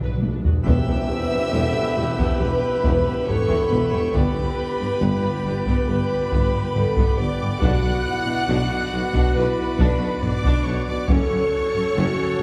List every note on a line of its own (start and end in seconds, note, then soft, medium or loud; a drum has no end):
0.00 0.11 B1 soft
0.00 0.09 B2 medium
0.00 0.18 F#3 soft
0.00 0.42 D4 soft
0.00 0.22 B4 soft
0.00 taiko low-mid medium
0.11 0.16 B2 medium
0.17 0.24 B2 medium
0.22 0.31 B1 soft
0.22 0.33 B1 soft
0.22 0.31 B2 medium
0.22 0.31 B4 soft
0.22 taiko high medium
0.32 0.39 B2 medium
0.40 0.47 B2 medium
0.44 0.54 B1 soft
0.44 0.54 B2 medium
0.44 0.53 F#4 soft
0.44 taiko low medium
0.55 0.62 B2 medium
0.63 0.75 E1 medium
0.63 0.73 E2 medium
0.63 4.09 B3 medium
0.63 0.86 B3 medium
0.63 4.09 G4 medium
0.63 4.10 G4 medium
0.63 1.07 G4 medium
0.63 4.09 B4 medium
0.63 4.09 E5 medium
0.63 2.37 E5 medium
0.63 2.36 E6 loud
0.63 taiko medium
0.63 tam-tam medium
0.67 0.75 E1 medium
0.88 0.96 E2 medium
0.88 0.97 B3 soft
1.10 1.53 B4 medium
1.31 1.39 E2 medium
1.31 1.40 B3 soft
1.52 1.61 E1 medium
1.52 1.63 E1 medium
1.52 1.61 E2 medium
1.52 1.74 B3 medium
1.52 1.96 A4 medium
1.74 1.82 E2 medium
1.74 1.83 B3 medium
1.95 2.04 E1 medium
1.95 2.06 E1 medium
1.95 2.05 E2 medium
1.95 2.06 G3 medium
1.95 2.39 G4 medium
2.18 2.26 E2 medium
2.18 2.39 B3 medium
2.18 taiko medium
2.39 2.48 E1 soft
2.39 2.50 E1 medium
2.39 2.48 E2 medium
2.39 2.49 B3 medium
2.39 3.27 B4 medium
2.39 3.28 B4 medium
2.39 3.26 B5 medium
2.83 2.92 E1 medium
2.83 2.93 E1 medium
2.83 2.91 E2 medium
2.83 3.04 B3 medium
2.83 taiko medium
3.05 3.14 E2 medium
3.05 3.13 B3 medium
3.27 3.36 E1 soft
3.27 3.37 E1 medium
3.27 3.36 E2 medium
3.27 3.37 G3 medium
3.27 4.13 A4 medium
3.27 3.70 C#5 medium
3.27 3.70 C#6 medium
3.27 taiko low-mid medium
3.48 3.57 E2 medium
3.48 3.69 B3 medium
3.48 taiko medium
3.70 3.80 E1 medium
3.70 3.79 E2 medium
3.70 3.79 B3 medium
3.70 3.92 B4 medium
3.70 3.93 B5 medium
3.92 4.00 E2 medium
3.92 4.01 G3 medium
3.92 4.14 C#5 medium
3.92 4.14 C#6 medium
4.13 4.23 G1 medium
4.13 4.23 G2 medium
4.13 7.58 B3 medium
4.13 4.35 B3 medium
4.13 7.57 G4 medium
4.13 7.58 G4 medium
4.13 5.89 G4 medium
4.13 5.84 B4 medium
4.13 7.57 B4 medium
4.13 7.59 D5 medium
4.13 5.87 B5 medium
4.13 taiko medium
4.37 4.45 G2 soft
4.37 4.46 B3 medium
4.80 4.88 G2 medium
4.80 4.89 B3 medium
5.00 5.09 G1 medium
5.00 5.10 G2 medium
5.00 5.22 B3 medium
5.23 5.32 G2 soft
5.23 5.31 B3 medium
5.44 5.52 G1 medium
5.44 5.53 G1 medium
5.44 5.54 G2 medium
5.44 5.53 G3 medium
5.66 5.76 G2 medium
5.66 5.86 B3 medium
5.66 taiko medium
5.86 5.96 G1 medium
5.86 5.97 G2 medium
5.86 5.97 B3 medium
5.86 7.14 B4 medium
5.86 6.20 B4 medium
5.86 7.16 B5 medium
6.31 6.40 G1 medium
6.31 6.41 G2 medium
6.31 6.51 B3 medium
6.31 6.75 B4 medium
6.31 taiko medium
6.54 6.62 G2 medium
6.54 6.62 B3 medium
6.73 6.82 G1 medium
6.73 6.83 G1 soft
6.73 6.84 G2 medium
6.73 6.84 G3 medium
6.73 7.17 A4 medium
6.73 taiko low-mid medium
6.97 7.06 G2 medium
6.97 7.17 B3 medium
6.97 taiko medium
7.18 7.26 G1 medium
7.18 7.27 G1 medium
7.18 7.27 G2 soft
7.18 7.28 B3 medium
7.18 7.62 G4 medium
7.18 7.61 D5 medium
7.18 7.61 D6 medium
7.41 7.50 G2 medium
7.41 7.49 G3 medium
7.60 7.70 B1 medium
7.60 7.71 B1 medium
7.60 7.71 B2 medium
7.60 11.04 B3 medium
7.60 7.81 D4 medium
7.60 11.08 F#4 medium
7.60 11.04 F#4 medium
7.60 8.04 F#4 medium
7.60 11.04 B4 medium
7.60 11.04 D5 medium
7.60 9.31 F#5 medium
7.60 9.35 F#6 loud
7.60 taiko medium
7.83 7.93 B2 medium
7.83 7.91 D4 medium
8.04 8.48 E4 medium
8.26 8.35 B2 medium
8.26 8.34 D4 soft
8.46 8.57 B1 medium
8.46 8.57 B2 medium
8.46 8.90 D4 medium
8.46 8.68 D4 medium
8.69 8.79 B2 medium
8.69 8.77 D4 medium
8.92 9.01 B1 medium
8.92 9.01 B2 medium
8.92 9.00 B3 medium
8.92 9.35 F#4 medium
9.14 9.22 B2 medium
9.14 9.34 D4 medium
9.14 taiko medium
9.35 9.45 B1 medium
9.35 9.43 B2 medium
9.35 9.43 D4 medium
9.35 9.78 E4 medium
9.35 10.22 B4 medium
9.35 10.22 B5 medium
9.79 9.87 B1 medium
9.79 9.88 B1 medium
9.79 9.87 B2 medium
9.79 9.99 D4 medium
9.79 11.10 D4 medium
9.79 taiko medium
9.99 10.07 B2 medium
9.99 10.10 D4 medium
10.21 10.31 B1 medium
10.21 10.30 B2 medium
10.21 10.32 B3 medium
10.21 10.65 D5 medium
10.21 10.65 D6 loud
10.21 taiko low-mid medium
10.44 10.52 B2 medium
10.44 10.65 D4 medium
10.44 taiko medium
10.63 10.74 B1 medium
10.63 10.74 B2 soft
10.63 10.86 C#5 medium
10.63 10.86 C#6 medium
10.68 10.76 D4 medium
10.86 10.96 B2 medium
10.86 10.97 B3 medium
10.86 11.08 D5 medium
10.86 11.08 D6 medium
11.07 11.17 F#1 medium
11.07 11.18 F#1 medium
11.07 11.17 F#2 medium
11.07 12.43 C#4 medium
11.07 11.29 C#4 medium
11.07 12.43 F#4 medium
11.07 12.43 A4 medium
11.07 11.95 A4 medium
11.07 12.43 A4 medium
11.07 12.43 C#5 medium
11.07 12.43 C#6 loud
11.07 taiko medium
11.31 11.39 F#2 medium
11.31 11.39 C#4 medium
11.74 11.82 F#2 medium
11.74 11.83 C#4 medium
11.96 12.04 F#1 medium
11.96 12.05 F#1 medium
11.96 12.04 F#2 medium
11.96 12.17 C#4 medium
11.96 12.43 F#4 medium
12.17 12.25 F#2 medium
12.17 12.27 C#4 soft
12.39 12.43 F#1 medium
12.39 12.43 A3 medium